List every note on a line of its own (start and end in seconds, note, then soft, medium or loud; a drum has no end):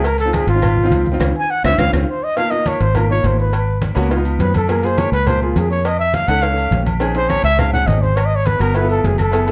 0.00 0.43 C#2 medium
0.04 0.19 A#4 loud
0.04 cowbell loud
0.04 high conga soft
0.04 low agogo loud
0.04 maracas medium
0.18 0.36 A4 loud
0.18 cowbell medium
0.18 high conga soft
0.18 maracas medium
0.25 0.46 C4 medium
0.25 0.47 D#4 medium
0.25 0.47 F4 medium
0.33 0.48 G#4 loud
0.33 cowbell medium
0.33 high conga loud
0.33 low timbale medium
0.33 low agogo loud
0.33 claves medium
0.33 maracas medium
0.47 0.88 G#1 loud
0.47 1.17 F4 loud
0.47 cowbell medium
0.47 maracas soft
0.54 0.75 C4 medium
0.54 0.76 D#4 medium
0.54 0.76 F4 medium
0.62 cowbell loud
0.62 high conga soft
0.62 low conga medium
0.62 low agogo loud
0.62 claves medium
0.62 maracas medium
0.77 high conga soft
0.77 low conga medium
0.83 1.04 C4 loud
0.83 1.05 D#4 medium
0.83 1.06 F4 loud
0.90 1.18 C#2 medium
0.90 cowbell medium
0.90 high conga medium
0.90 low timbale medium
0.90 low agogo medium
0.90 maracas medium
1.06 high conga medium
1.06 maracas soft
1.12 1.18 C4 loud
1.12 1.21 D#4 medium
1.12 1.18 F4 loud
1.19 1.31 C#2 loud
1.19 1.30 C4 medium
1.19 1.30 C#4 medium
1.19 1.29 F4 loud
1.19 cowbell loud
1.19 high conga loud
1.19 high timbale loud
1.19 claves loud
1.19 maracas loud
1.37 1.52 G#5 loud
1.50 1.64 F#5 loud
1.64 1.75 C#2 loud
1.64 1.74 C4 loud
1.64 1.74 C#4 loud
1.64 1.74 F4 loud
1.64 1.80 E5 loud
1.64 cowbell loud
1.64 high conga medium
1.64 high timbale loud
1.64 claves loud
1.64 maracas loud
1.78 1.89 C#2 loud
1.78 1.88 C4 loud
1.78 1.88 C#4 loud
1.78 1.88 F4 loud
1.78 1.93 F5 loud
1.78 cowbell loud
1.78 high conga medium
1.78 high timbale loud
1.78 claves loud
1.78 maracas loud
1.93 2.04 C#2 loud
1.93 2.03 C4 loud
1.93 2.03 C#4 loud
1.93 2.03 F4 loud
1.93 2.10 G#4 medium
1.93 cowbell loud
1.93 high conga medium
1.93 high timbale loud
1.93 claves loud
1.93 maracas loud
2.09 2.25 C5 loud
2.23 2.39 D#5 loud
2.36 2.47 A#3 medium
2.36 2.47 D#4 medium
2.36 2.48 F4 medium
2.36 2.52 F5 loud
2.36 cowbell loud
2.36 high conga soft
2.36 low agogo loud
2.36 maracas medium
2.50 2.81 A#3 medium
2.50 2.82 D#4 medium
2.50 2.82 F4 medium
2.50 2.69 D#5 loud
2.50 cowbell medium
2.50 high conga soft
2.66 2.83 C#5 loud
2.66 cowbell medium
2.66 high conga loud
2.66 low timbale medium
2.66 low agogo loud
2.66 maracas medium
2.80 3.21 G#1 medium
2.80 2.97 C5 loud
2.80 cowbell medium
2.80 maracas soft
2.95 3.05 A#3 medium
2.95 3.06 D#4 medium
2.95 3.06 F4 medium
2.95 3.10 A#4 medium
2.95 cowbell loud
2.95 high conga soft
2.95 low conga medium
2.95 low agogo loud
2.95 maracas medium
3.09 3.50 A#3 medium
3.09 3.50 D#4 medium
3.09 3.51 F4 medium
3.09 3.28 C#5 loud
3.09 high conga soft
3.24 3.91 G#1 medium
3.24 3.39 C5 medium
3.24 cowbell medium
3.24 high conga medium
3.24 low timbale medium
3.24 low agogo medium
3.24 maracas medium
3.39 3.80 B4 loud
3.39 maracas soft
3.53 cowbell loud
3.53 low agogo loud
3.53 maracas medium
3.67 high conga soft
3.82 cowbell medium
3.82 high conga loud
3.82 low timbale medium
3.82 low agogo medium
3.82 maracas medium
3.95 4.37 C#2 loud
3.95 4.06 A#3 loud
3.95 4.06 B3 loud
3.95 4.06 C#4 loud
3.95 4.07 F#4 loud
3.95 cowbell medium
3.95 high conga soft
3.95 low agogo loud
3.95 maracas soft
4.09 4.15 B3 medium
4.09 4.16 D#4 medium
4.09 4.16 F4 medium
4.09 cowbell loud
4.09 high conga soft
4.09 maracas medium
4.16 4.53 B3 medium
4.16 4.53 D#4 medium
4.16 4.54 F4 loud
4.25 high conga soft
4.25 low agogo medium
4.25 maracas medium
4.39 5.07 F#2 medium
4.39 4.54 B4 loud
4.39 cowbell medium
4.39 high conga medium
4.39 low timbale medium
4.39 maracas medium
4.54 4.73 A4 loud
4.54 cowbell medium
4.54 high conga medium
4.54 low agogo loud
4.54 maracas soft
4.67 4.78 A#3 medium
4.67 4.79 F4 medium
4.67 4.79 G#4 medium
4.67 4.87 A#4 loud
4.67 cowbell loud
4.67 high conga soft
4.67 low agogo medium
4.67 maracas medium
4.82 5.14 A#3 medium
4.82 5.14 F4 medium
4.82 5.14 G#4 loud
4.82 5.00 C5 loud
4.82 cowbell medium
4.82 high conga soft
4.82 maracas medium
4.98 5.12 C#5 loud
4.98 cowbell medium
4.98 high conga loud
4.98 low timbale medium
4.98 low agogo loud
4.98 maracas medium
5.12 5.53 C#2 medium
5.12 5.29 B4 loud
5.12 cowbell medium
5.12 maracas soft
5.26 5.37 A#3 medium
5.26 5.38 F4 medium
5.26 5.38 G#4 medium
5.26 5.42 C5 loud
5.26 cowbell loud
5.26 high conga soft
5.26 low conga medium
5.26 low agogo loud
5.26 maracas medium
5.41 5.82 A#3 medium
5.41 5.82 F4 medium
5.41 5.60 F4 medium
5.41 5.83 G#4 medium
5.41 high conga soft
5.56 6.23 F2 loud
5.56 5.70 G#4 medium
5.56 cowbell medium
5.56 high conga medium
5.56 low timbale medium
5.56 low agogo medium
5.56 maracas medium
5.71 5.88 C#5 loud
5.71 maracas soft
5.85 5.99 D#5 loud
5.85 cowbell loud
5.85 high conga soft
5.85 low agogo loud
5.85 maracas medium
5.99 6.16 E5 loud
5.99 high conga soft
6.14 6.30 F5 loud
6.14 cowbell medium
6.14 high conga loud
6.14 low timbale medium
6.14 low agogo medium
6.14 maracas medium
6.28 6.69 C#2 medium
6.28 6.39 C#4 medium
6.28 6.39 D#4 medium
6.28 6.39 A4 loud
6.28 6.44 F#5 loud
6.28 cowbell medium
6.28 high conga soft
6.28 low agogo loud
6.28 maracas soft
6.42 6.48 C#4 medium
6.42 6.48 D#4 medium
6.42 6.49 A4 medium
6.42 6.86 F5 loud
6.42 cowbell loud
6.42 high conga soft
6.42 maracas medium
6.50 6.86 C#4 medium
6.50 6.86 D#4 medium
6.50 6.87 A4 medium
6.58 high conga soft
6.58 low agogo loud
6.71 7.39 A#1 medium
6.71 cowbell medium
6.71 high conga medium
6.71 low timbale medium
6.71 maracas medium
6.86 cowbell medium
6.86 high conga medium
6.86 low agogo loud
6.86 maracas soft
7.00 7.11 C4 medium
7.00 7.11 C#4 medium
7.00 7.11 D#4 medium
7.00 7.12 G#4 loud
7.00 cowbell loud
7.00 low agogo loud
7.00 maracas medium
7.14 7.45 C4 medium
7.14 7.46 C#4 medium
7.14 7.46 D#4 medium
7.14 7.46 G#4 loud
7.14 7.31 C5 loud
7.14 cowbell medium
7.14 high conga soft
7.29 7.44 C#5 loud
7.29 cowbell medium
7.29 high conga loud
7.29 low timbale medium
7.29 low agogo loud
7.29 claves medium
7.29 maracas medium
7.43 7.84 C#2 medium
7.43 7.61 E5 loud
7.43 cowbell medium
7.43 maracas soft
7.57 7.68 C4 medium
7.57 7.69 C#4 medium
7.57 7.69 D#4 medium
7.57 7.69 G#4 medium
7.57 7.72 F5 loud
7.57 cowbell loud
7.57 high conga soft
7.57 low conga medium
7.57 low agogo loud
7.57 claves medium
7.57 maracas medium
7.72 8.13 C4 medium
7.72 8.14 C#4 medium
7.72 8.14 D#4 medium
7.72 8.14 G#4 medium
7.72 7.88 F#5 loud
7.72 high conga soft
7.72 low conga medium
7.72 maracas medium
7.87 8.55 G#1 medium
7.87 8.03 D#5 loud
7.87 cowbell medium
7.87 high conga medium
7.87 low timbale medium
7.87 low agogo medium
7.87 maracas medium
8.02 8.18 C5 loud
8.02 high conga medium
8.02 maracas soft
8.16 8.27 C#5 loud
8.16 cowbell loud
8.16 high conga soft
8.16 low agogo loud
8.16 claves medium
8.16 maracas medium
8.26 8.37 D#5 loud
8.32 high conga soft
8.36 8.48 C#5 loud
8.46 8.63 B4 loud
8.46 cowbell medium
8.46 high conga loud
8.46 low timbale medium
8.46 low agogo medium
8.46 maracas medium
8.59 9.01 G1 loud
8.59 8.70 B3 medium
8.59 8.70 F#4 medium
8.59 8.71 A#4 medium
8.59 8.78 A#4 loud
8.59 cowbell medium
8.59 high conga soft
8.59 low agogo loud
8.59 claves medium
8.59 maracas soft
8.74 8.79 B3 medium
8.74 8.79 E4 medium
8.74 8.80 F4 medium
8.74 8.80 A4 medium
8.74 8.89 B4 loud
8.74 cowbell loud
8.74 high conga soft
8.74 maracas medium
8.80 9.17 B3 medium
8.80 9.17 E4 medium
8.80 9.18 F4 medium
8.80 9.18 A4 medium
8.89 9.07 A4 loud
8.89 high conga soft
8.89 low agogo medium
9.04 9.52 F#1 medium
9.04 9.19 G#4 medium
9.04 cowbell medium
9.04 high conga medium
9.04 low timbale medium
9.04 maracas medium
9.18 9.52 A4 medium
9.18 cowbell medium
9.18 high conga medium
9.18 low agogo loud
9.18 claves medium
9.18 maracas soft
9.31 9.42 B3 medium
9.31 9.42 E4 medium
9.31 9.43 G#4 medium
9.31 9.43 A4 medium
9.31 cowbell loud
9.31 high conga soft
9.31 low agogo medium
9.31 maracas medium
9.46 9.52 B3 medium
9.46 9.52 E4 medium
9.46 9.52 G#4 medium
9.46 9.52 A4 medium
9.46 cowbell medium
9.46 high conga soft
9.46 maracas medium